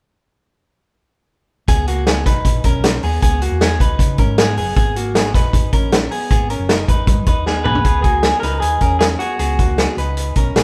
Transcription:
1.68 fingered electric bass C#2, clean electric guitar B3 G#4, kick, closed hi-hat
1.87 clean electric guitar A#3 F#4, closed hi-hat
2.07 clean electric guitar B3 G#4, snare, closed hi-hat
2.25 fingered electric bass B1, clean electric guitar D#4 B4, kick, snare, closed hi-hat
2.45 fingered electric bass A#1, kick, closed hi-hat
2.64 fingered electric bass B1, clean electric guitar C#4 A#4, kick, closed hi-hat
2.84 snare, closed hi-hat
3.03 fingered electric bass D#2, clean electric guitar B3 G#4, open hi-hat
3.22 fingered electric bass C#2, clean electric guitar B3 G#4, kick, closed hi-hat
3.42 clean electric guitar A#3 F#4, closed hi-hat
3.51 fingered electric bass E2
3.61 clean electric guitar B3 G#4, snare, closed hi-hat
3.80 fingered electric bass C#2, clean electric guitar D#4 B4, kick, closed hi-hat
3.99 fingered electric bass C#3, kick, closed hi-hat
4.18 fingered electric bass G#2, clean electric guitar C#4 A#4, kick, closed hi-hat
4.38 clean electric guitar B3 G#4, snare, closed hi-hat
4.57 fingered electric bass F#1, clean electric guitar B3 G#4, open hi-hat
4.76 fingered electric bass G#1, clean electric guitar B3 G#4, kick, closed hi-hat
4.96 clean electric guitar A#3 F#4, closed hi-hat
5.15 clean electric guitar B3 G#4, snare, closed hi-hat
5.34 fingered electric bass A#1, clean electric guitar D#4 B4, kick, snare, closed hi-hat
5.53 fingered electric bass G#1, kick, closed hi-hat
5.73 fingered electric bass A#1, clean electric guitar C#4 A#4, kick, closed hi-hat
5.92 snare, closed hi-hat
6.11 clean electric guitar B3 G#4, open hi-hat
6.30 fingered electric bass G#1, clean electric guitar B3 G#4, kick, closed hi-hat
6.50 clean electric guitar C#4 A#4, closed hi-hat
6.59 fingered electric bass F#1
6.69 clean electric guitar D#4 A#4, snare, closed hi-hat
6.88 fingered electric bass G#1, clean electric guitar D#4 B4, kick, closed hi-hat
7.07 fingered electric bass G#2, kick, closed hi-hat
7.26 fingered electric bass D#2, clean electric guitar D#4 B4, kick, closed hi-hat
7.46 clean electric guitar B3 G#4, snare
7.64 fingered electric bass B1, clean electric guitar B3 G#4 B4, mid tom
7.75 floor tom
7.85 fingered electric bass C#2, clean electric guitar B3 G#4, kick, closed hi-hat
8.02 clean electric guitar A#3 F#4 G#4, kick, closed hi-hat
8.23 clean electric guitar B3 G#4, snare, closed hi-hat
8.40 fingered electric bass C#2, clean electric guitar A#4 B4, snare, closed hi-hat
8.44 clean electric guitar D#4
8.60 fingered electric bass D#2, clean electric guitar G#4, closed hi-hat
8.81 fingered electric bass E2, clean electric guitar C#4 A#4, kick, closed hi-hat
8.99 clean electric guitar G#4, snare, closed hi-hat
9.19 clean electric guitar B3 F#4 G#4, closed hi-hat
9.39 fingered electric bass C#2, clean electric guitar B3 G#4, closed hi-hat
9.59 clean electric guitar A#3 F#4, kick, closed hi-hat
9.78 clean electric guitar B3 G#4, snare, closed hi-hat
9.97 fingered electric bass C#2, clean electric guitar D#4 B4, closed hi-hat
10.17 closed hi-hat
10.35 fingered electric bass B1, clean electric guitar C#4 A#4, kick, closed hi-hat
10.55 fingered electric bass A#1, clean electric guitar B3 G#4, snare, closed hi-hat

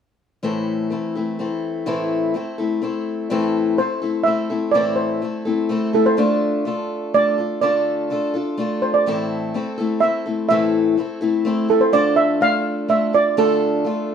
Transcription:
0.43 steel-string acoustic guitar A2 E3 A3 C4 E4 A4
0.90 steel-string acoustic guitar A3 C4 E4 A4
1.15 steel-string acoustic guitar A3 C4 E4 A4
1.39 steel-string acoustic guitar A3 C4 E4 A4
1.86 steel-string acoustic guitar A2 E3 A3 C4 E4 A4
2.34 steel-string acoustic guitar A3 C4 E4 A4
2.58 steel-string acoustic guitar A3 C4 E4 A4
2.82 steel-string acoustic guitar A3 C4 E4 A4
3.30 steel-string acoustic guitar A2 E3 A3 C4 E4 A4
3.78 steel-string acoustic guitar A3 C4 E4 A4, steel pan C5
4.02 steel-string acoustic guitar A3 C4 E4 A4
4.24 steel-string acoustic guitar A3 C4 E4, steel pan E5
4.28 steel-string acoustic guitar A4
4.50 steel-string acoustic guitar A3 C4 E4 A4
4.72 steel-string acoustic guitar A2 E3 A3 C4 E4, steel pan D5
4.76 steel-string acoustic guitar A4
4.96 steel pan C5
5.22 steel-string acoustic guitar A3 C4 E4 A4
5.45 steel-string acoustic guitar A3 C4 E4 A4
5.69 steel-string acoustic guitar A3 C4 E4 A4
5.93 steel-string acoustic guitar A3 C4 E4 A4, steel pan A4
6.06 steel pan C5
6.17 steel-string acoustic guitar D3 A3 D4 F4 A4
6.65 steel-string acoustic guitar A3 D4 F4 A4
7.14 steel-string acoustic guitar A3 D4 F4 A4, steel pan D5
7.38 steel-string acoustic guitar D4 F4 A4
7.61 steel-string acoustic guitar D3 A3 D4 F4 A4, steel pan D5
8.10 steel-string acoustic guitar A3 D4 F4 A4
8.34 steel-string acoustic guitar D4 F4 A4
8.58 steel-string acoustic guitar A3 D4 F4 A4
8.82 steel pan C5
8.94 steel pan D5
9.06 steel-string acoustic guitar A2 E3 A3 C4 E4 A4
9.54 steel-string acoustic guitar A3 C4 E4 A4
9.78 steel-string acoustic guitar A3 C4 E4 A4
10.00 steel-string acoustic guitar A3 C4 E4 A4, steel pan E5
10.26 steel-string acoustic guitar A3 C4 E4 A4
10.49 steel-string acoustic guitar A2 E3 A3 C4 E4 A4, steel pan E5
10.97 steel-string acoustic guitar A3 C4 E4 A4
11.21 steel-string acoustic guitar A3 C4 E4 A4
11.45 steel-string acoustic guitar A3 C4 E4 A4
11.69 steel-string acoustic guitar A3 C4 E4 A4, steel pan A4
11.81 steel pan C5
11.93 steel-string acoustic guitar D3 A3 D4 F4 A4, steel pan D5
12.16 steel pan E5
12.41 steel-string acoustic guitar A3 D4 F4 A4, steel pan F5
12.88 steel-string acoustic guitar A3 D4 F4 A4, steel pan E5
13.13 steel-string acoustic guitar D4 F4 A4, steel pan D5
13.37 steel-string acoustic guitar D3 A3 D4 F4 A4, steel pan A4
13.85 steel-string acoustic guitar A3 D4 F4 A4

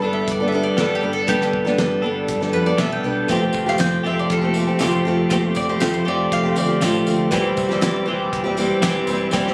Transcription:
Already playing: tonewheel organ A4 D5 G5 B5, mandolin A5
0.02 fingered electric bass G1, steel-string acoustic guitar G3 B3 D4 A4
0.13 mandolin E5
0.28 fingered electric bass G1, mandolin D5, kick, closed hi-hat
0.40 steel-string acoustic guitar B3 D4 A4
0.48 mandolin E5
0.52 steel-string acoustic guitar G3 B3 D4 A4
0.63 mandolin D5
0.77 fingered electric bass G1, steel-string acoustic guitar G3 B3 D4 A4, mandolin A4, snare, closed hi-hat
0.95 mandolin G4
1.01 fingered electric bass G1, steel-string acoustic guitar G3 B3 D4 A4
1.13 mandolin A4
1.27 fingered electric bass G1, steel-string acoustic guitar G3 B3 D4 A4, mandolin G4, kick, closed hi-hat
1.39 steel-string acoustic guitar B3 D4 A4, snare
1.43 mandolin G4
1.53 fingered electric bass G1, kick
1.65 steel-string acoustic guitar B3 D4 A4, snare
1.76 fingered electric bass G1, steel-string acoustic guitar G3 B3 D4 A4, snare, closed hi-hat
2.02 fingered electric bass G1, steel-string acoustic guitar G3 B3 D4 A4
2.28 fingered electric bass G1, kick, closed hi-hat
2.41 steel-string acoustic guitar B3 D4 A4, snare
2.52 fingered electric bass F2, steel-string acoustic guitar G3 B3 D4 A4, mandolin B4
2.66 steel-string acoustic guitar B3 D4 A4, mandolin D5
2.78 fingered electric bass B1, steel-string acoustic guitar G3 B3 D4 A4, mandolin E5, snare, closed hi-hat
2.92 mandolin G5
3.03 fingered electric bass B1, steel-string acoustic guitar G3 B3 D4 A4
3.28 fingered electric bass F1, steel-string acoustic guitar F3 A3 C4 G4, tonewheel organ F5 C6, kick, closed hi-hat, tambourine
3.42 steel-string acoustic guitar A3 C4 G4
3.53 fingered electric bass F1, kick, tambourine
3.66 steel-string acoustic guitar A3 C4 G4, mandolin F5, snare
3.78 fingered electric bass F1, steel-string acoustic guitar F3 A3 C4 G4, mandolin G5, snare, closed hi-hat, tambourine
4.04 fingered electric bass F1, steel-string acoustic guitar F3 A3 C4 G4, mandolin E5
4.19 mandolin D5
4.30 fingered electric bass F1, mandolin F4 A4, kick, closed hi-hat
4.41 steel-string acoustic guitar A3 C4 G4
4.54 steel-string acoustic guitar F3 A3 C4 G4, tambourine
4.67 steel-string acoustic guitar A3 C4 G4
4.79 fingered electric bass F1, steel-string acoustic guitar F3 A3 C4 G4, snare, closed hi-hat, tambourine
5.05 fingered electric bass F1, steel-string acoustic guitar F3 A3 C4 G4
5.30 fingered electric bass F1, steel-string acoustic guitar F3 A3 C4 G4, kick, closed hi-hat, tambourine
5.43 steel-string acoustic guitar A3 C4 G4
5.55 fingered electric bass F1, mandolin D5, kick, tambourine
5.69 steel-string acoustic guitar A3 C4 G4, mandolin C5
5.80 fingered electric bass F1, steel-string acoustic guitar F3 A3 C4 G4, mandolin G4, snare, closed hi-hat, tambourine
5.94 mandolin C5
6.05 fingered electric bass F1, steel-string acoustic guitar F3 A3 C4 G4, mandolin D5
6.09 clean electric guitar F3
6.32 fingered electric bass F1, mandolin F5, kick, closed hi-hat
6.43 steel-string acoustic guitar A3 C4 G4
6.55 fingered electric bass D2, steel-string acoustic guitar F3 A3 C4 G4, mandolin D5 F5, tambourine
6.68 steel-string acoustic guitar A3 C4 G4
6.81 fingered electric bass A1, steel-string acoustic guitar F3 A3 C4 G4, snare, closed hi-hat, tambourine
7.06 fingered electric bass D2, steel-string acoustic guitar F3 A3 C4 G4, tambourine
7.30 fingered electric bass E1, steel-string acoustic guitar E3 G3 C4 G4, tonewheel organ C5 E5 G5 E6, kick, closed hi-hat, tambourine
7.44 steel-string acoustic guitar G3 C4 G4
7.57 fingered electric bass E1, kick, tambourine
7.69 steel-string acoustic guitar G3 C4 G4, snare
7.81 fingered electric bass E1, steel-string acoustic guitar E3 G3 C4 G4, snare, closed hi-hat, tambourine
8.06 fingered electric bass E1, steel-string acoustic guitar E3 G3 C4 G4
8.11 clean electric guitar E3
8.33 fingered electric bass E1, kick, closed hi-hat
8.44 steel-string acoustic guitar G3 C4 G4
8.57 steel-string acoustic guitar E3 G3 C4 G4, tambourine
8.82 fingered electric bass E1, steel-string acoustic guitar E3 G3 C4 G4, snare, closed hi-hat, tambourine
9.07 fingered electric bass E1, steel-string acoustic guitar E3 G3 C4 G4, tambourine
9.31 fingered electric bass E1, steel-string acoustic guitar E3 G3 C4 G4, tonewheel organ A5, kick, closed hi-hat, tambourine
9.45 steel-string acoustic guitar G3 C4 G4, snare

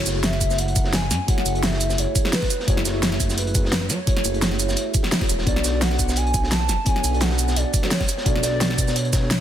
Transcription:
Already playing: tine electric piano A3 E4 F#4 G#4 C#5, soft synth lead C#5
0.06 analog synth bass F#1, snare, closed hi-hat, shaker
0.12 tine electric piano A3 E4 F#4
0.17 tine electric piano G#4 E5
0.23 soft synth lead E5, snare, closed hi-hat
0.32 snare
0.41 kick, closed hi-hat, shaker
0.51 snare, shaker
0.58 soft synth lead F#5, closed hi-hat
0.68 closed hi-hat
0.76 analog synth bass F#1, kick, closed hi-hat, shaker
0.84 tine electric piano A3 E4 F#4 G#4 C#5, snare
0.93 soft synth lead G#5, snare, closed hi-hat
1.11 analog synth bass F#2, snare, closed hi-hat, shaker
1.27 tine electric piano A3 E4 F#4 G#4 C#5, soft synth lead F#5, kick, closed hi-hat
1.38 snare
1.46 analog synth bass F#1, closed hi-hat, shaker
1.52 tine electric piano A3 E4 F#4, closed hi-hat
1.57 tine electric piano G#4 E5
1.63 soft synth lead E5, snare, closed hi-hat
1.73 snare
1.81 closed hi-hat, shaker
1.90 snare, shaker
1.98 analog synth bass F#1, soft synth lead C#5, closed hi-hat
2.15 kick, closed hi-hat, shaker
2.23 tine electric piano A3 E4 F#4 G#4 C#5, snare
2.33 soft synth lead B4, snare, closed hi-hat, open hi-hat
2.42 kick, snare
2.50 closed hi-hat, shaker
2.60 snare
2.66 analog synth bass F#1, tine electric piano A3 E4 F#4 G#4 C#5, soft synth lead C#5, kick, closed hi-hat
2.77 snare
2.85 analog synth bass F#1, soft synth lead C#5, snare, closed hi-hat, shaker
2.91 tine electric piano A3 E4 F#4
2.96 tine electric piano G#4 E5
3.03 snare, closed hi-hat
3.12 snare
3.20 kick, closed hi-hat, shaker
3.30 snare, shaker
3.38 soft synth lead B4, closed hi-hat
3.47 closed hi-hat
3.55 analog synth bass F#1, kick, closed hi-hat, shaker
3.63 tine electric piano A3 E4 F#4 G#4 C#5, snare
3.72 snare, closed hi-hat
3.90 analog synth bass F#2, soft synth lead C#5, snare, closed hi-hat, shaker
4.06 tine electric piano A3 E4 F#4 G#4 C#5, kick, closed hi-hat
4.17 snare
4.24 analog synth bass F#1, closed hi-hat, shaker
4.31 tine electric piano A3 E4 F#4, closed hi-hat
4.36 tine electric piano G#4 E5
4.42 snare, closed hi-hat
4.51 snare
4.59 closed hi-hat, shaker
4.69 snare, shaker
4.77 closed hi-hat
4.94 kick, closed hi-hat, shaker
5.03 snare
5.11 snare, closed hi-hat, open hi-hat
5.20 tine electric piano A3 E4 F#4 G#4 C#5, kick, snare
5.29 analog synth bass E1, closed hi-hat, shaker
5.38 snare
5.45 analog synth bass B1, tine electric piano B3 D4 F#4 A4 C#5, soft synth lead D5, kick, closed hi-hat
5.56 snare
5.64 analog synth bass B1, snare, closed hi-hat, shaker
5.71 tine electric piano B3 D4 F#4
5.75 tine electric piano A4 D5
5.81 soft synth lead F#5, snare, closed hi-hat
5.91 snare
5.99 kick, closed hi-hat, shaker
6.09 snare, shaker
6.16 soft synth lead G#5, closed hi-hat
6.27 closed hi-hat
6.34 analog synth bass B1, kick, closed hi-hat, shaker
6.42 tine electric piano B3 D4 F#4 A4 C#5, snare
6.52 soft synth lead A5, snare, closed hi-hat
6.69 analog synth bass F#1, snare, closed hi-hat, shaker
6.85 tine electric piano B3 D4 F#4 A4 C#5, soft synth lead G#5, kick, closed hi-hat
6.96 snare
7.04 analog synth bass B1, closed hi-hat, shaker
7.10 tine electric piano B3 D4 F#4
7.14 tine electric piano A4 D5, closed hi-hat
7.21 soft synth lead F#5, snare, closed hi-hat
7.31 snare
7.38 closed hi-hat, shaker
7.48 snare, shaker
7.56 analog synth bass B1, soft synth lead D5, closed hi-hat
7.74 kick, closed hi-hat, shaker
7.82 tine electric piano B3 D4 F#4 A4 C#5, snare
7.91 soft synth lead C#5, snare, closed hi-hat, open hi-hat
8.00 kick, snare
8.09 closed hi-hat, shaker
8.18 snare
8.24 analog synth bass B1, tine electric piano B3 D4 F#4 A4 C#5, soft synth lead D5, kick, closed hi-hat
8.36 snare
8.43 analog synth bass B1, soft synth lead D5, snare, closed hi-hat, shaker
8.50 tine electric piano B3 D4 F#4
8.55 tine electric piano A4 D5
8.61 snare, closed hi-hat
8.69 snare
8.78 kick, closed hi-hat, shaker
8.88 snare, shaker
8.96 soft synth lead C#5, closed hi-hat
9.05 closed hi-hat
9.13 analog synth bass B1, kick, snare, closed hi-hat, shaker
9.21 tine electric piano B3 D4 F#4 A4 C#5
9.31 snare, closed hi-hat

